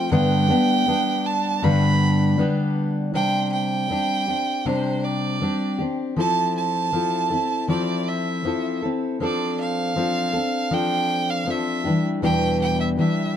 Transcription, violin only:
0.12 1.28 G5 loud
1.26 1.65 A5 medium
1.64 2.39 B5 loud
3.15 3.50 G5 loud
3.53 4.69 G5 loud
4.68 5.06 C5 medium
5.04 5.80 D5 medium
6.20 6.54 A5 loud
6.57 7.66 A5 loud
7.70 8.09 D5 medium
8.08 8.83 E5 medium
9.24 9.57 D5 medium
9.61 10.75 F5 loud
10.74 11.32 G5 loud
11.30 11.52 F5 medium
11.50 12.06 E5 medium
12.24 12.59 G5 loud
12.62 12.79 G5 medium
12.80 12.89 E5 medium
13.00 13.37 E5 medium

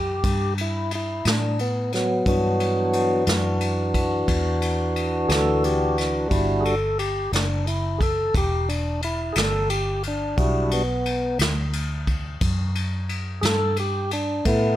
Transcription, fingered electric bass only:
0.00 0.21 F#2 medium
0.24 1.22 G2 medium
1.25 2.23 A2 medium
2.26 3.24 G2 medium
3.27 4.25 F#2 medium
4.28 5.27 E2 medium
5.29 6.28 D2 medium
6.31 7.30 G1 medium
7.32 8.31 F#1 medium
8.35 9.33 E1 medium
9.36 10.35 G1 medium
10.38 11.37 B1 medium
11.39 12.38 D2 medium
12.41 13.40 F#2 medium
13.43 14.42 G2 medium
14.45 14.76 A2 medium

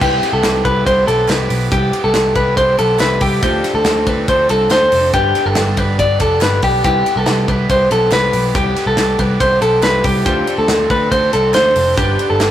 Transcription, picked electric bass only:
0.01 0.19 C2 loud
0.33 0.42 C2 medium
0.44 0.61 C2 loud
0.65 0.83 C2 medium
0.86 1.04 C2 loud
1.08 1.25 B1 medium
1.29 1.47 C2 loud
1.50 1.68 B1 loud
1.72 1.90 C2 loud
2.04 2.13 C2 medium
2.15 2.32 C2 loud
2.36 2.53 C2 medium
2.57 2.75 C2 loud
2.79 2.97 B1 medium
3.00 3.18 C2 loud
3.21 3.39 C2 medium
3.43 3.60 D2 loud
3.74 3.83 D2 medium
3.85 4.03 D2 loud
4.07 4.24 D2 medium
4.28 4.46 D2 loud
4.49 4.67 C2 medium
4.71 4.88 D2 loud
4.92 5.10 F1 medium
5.14 5.31 G1 loud
5.46 5.54 G1 medium
5.56 5.74 G1 loud
5.77 5.95 G1 medium
5.99 6.16 G1 medium
6.20 6.38 F1 medium
6.42 6.59 G1 loud
6.63 6.81 B1 loud
6.84 7.02 C2 loud
7.16 7.25 C2 medium
7.28 7.45 C2 loud
7.48 7.66 C2 medium
7.70 7.87 C2 loud
7.91 8.09 B1 medium
8.12 8.30 C2 loud
8.34 8.51 B1 medium
8.55 8.72 C2 loud
8.86 8.96 C2 medium
8.97 9.15 C2 loud
9.19 9.37 C2 medium
9.40 9.58 C2 loud
9.62 9.79 B1 medium
9.83 10.01 C2 loud
10.04 10.22 C2 medium
10.26 10.44 D2 loud
10.58 10.67 D2 medium
10.69 10.87 D2 loud
10.90 11.08 D2 loud
11.12 11.29 D2 loud
11.34 11.51 C2 medium
11.55 11.73 D2 loud
11.76 11.94 F1 medium
11.97 12.15 G1 loud
12.30 12.39 G1 medium
12.40 12.51 G1 medium

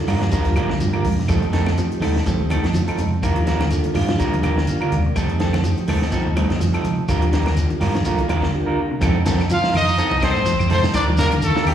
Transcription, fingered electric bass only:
0.08 0.27 G2 medium
0.45 0.54 D#2 medium
0.56 0.78 A2 medium
0.80 1.02 G2 medium
1.05 1.27 F2 medium
1.28 1.78 F2 medium
1.91 muted fingered electric bass stroke soft
2.00 2.20 D#2 medium
2.39 2.59 D#2 medium
2.64 2.83 F2 medium
2.88 muted fingered electric bass stroke soft
2.99 3.18 F2 medium
3.23 3.81 D#2 medium
3.95 4.14 G2 medium
4.33 4.41 D#2 medium
4.44 4.63 D#2 loud
4.82 muted fingered electric bass stroke soft
4.91 5.11 D#2 medium
5.16 5.65 F2 medium
5.77 muted fingered electric bass stroke soft
5.89 6.08 D#2 medium
6.25 6.45 D#2 medium
6.50 6.69 F2 medium
6.74 muted fingered electric bass stroke soft
6.84 7.03 F3 medium
7.08 7.66 D#2 medium
7.81 8.00 G2 medium
8.05 muted fingered electric bass stroke soft
8.18 8.27 D#2 medium
8.29 8.40 D#2 medium
9.01 9.40 F2 loud
9.50 9.60 F3 loud
9.73 9.93 F2 loud
10.11 10.20 C2 medium
10.36 10.55 A2 medium
10.59 10.78 F2 medium
10.94 11.32 D#2 medium
11.42 11.53 D#3 loud
11.65 11.74 D#2 medium

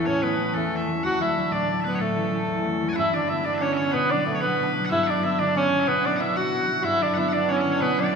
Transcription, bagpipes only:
0.06 0.22 C#5 medium
0.22 0.54 B4 medium
0.54 0.76 A4 medium
0.76 1.04 E5 medium
1.04 1.21 F#5 medium
1.21 1.52 E5 medium
1.52 1.80 D5 medium
1.80 1.95 B4 medium
1.80 1.84 E5 medium
1.95 1.99 C#5 medium
1.99 2.89 A4 medium
2.89 2.93 G#5 medium
2.93 3.14 E5 medium
2.93 2.96 F#5 medium
3.14 3.28 D5 medium
3.28 3.45 E5 medium
3.45 3.54 D5 medium
3.54 3.58 E5 medium
3.58 3.62 B4 medium
3.58 3.73 C#5 medium
3.73 3.92 C#5 medium
3.73 3.77 E5 medium
3.92 4.10 B4 medium
4.10 4.35 D5 medium
4.35 4.41 C#5 medium
4.41 4.85 B4 medium
4.85 4.90 F#5 medium
4.90 5.03 E5 medium
5.03 5.23 D5 medium
5.03 5.07 F#5 medium
5.23 5.39 E5 medium
5.39 5.57 D5 medium
5.57 5.80 C#5 medium
5.80 5.87 C#5 medium
5.80 5.83 E5 medium
5.87 6.05 B4 medium
6.05 6.16 D5 medium
6.16 6.20 F#5 medium
6.20 6.36 E5 medium
6.36 6.83 F#5 medium
6.83 7.02 E5 medium
7.02 7.14 D5 medium
7.14 7.29 E5 medium
7.14 7.17 F#5 medium
7.29 7.33 F#5 medium
7.33 7.49 D5 medium
7.49 7.57 C#5 medium
7.57 7.71 C#5 medium
7.57 7.60 E5 medium
7.71 7.81 C#5 medium
7.81 7.99 B4 medium
7.99 8.14 D5 medium

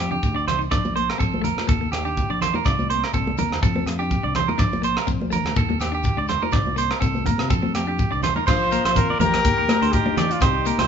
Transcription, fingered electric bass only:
0.00 0.17 F2 medium
0.23 0.45 D2 medium
0.47 0.69 C2 medium
0.72 1.09 A#1 medium
1.20 1.49 A#1 medium
1.57 1.66 A#2 medium
1.69 1.87 D#2 medium
1.92 2.21 D#2 medium
2.30 2.49 A#1 medium
2.66 3.03 C2 medium
3.14 3.43 C2 medium
3.51 3.60 D#2 medium
3.63 3.81 F2 medium
3.86 4.15 F2 medium
4.24 4.43 C2 medium
4.59 4.97 A#1 medium
5.08 5.37 A#1 medium
5.44 5.53 D2 medium
5.57 5.75 D#2 medium
5.80 6.09 D#2 medium
6.17 6.36 C#2 medium
6.53 6.91 C2 medium
7.02 7.31 C2 medium
7.39 7.48 C3 medium
7.51 7.69 F2 medium
7.75 8.04 F2 medium
8.13 8.31 C2 medium
8.48 8.77 A#1 medium
8.85 8.94 A#1 medium
9.09 9.18 A#2 medium
9.20 9.39 A#1 loud
9.45 9.55 D#2 medium
9.57 9.66 D#2 medium
9.82 10.01 D2 medium
10.41 10.70 C2 medium
10.78 10.87 C2 medium

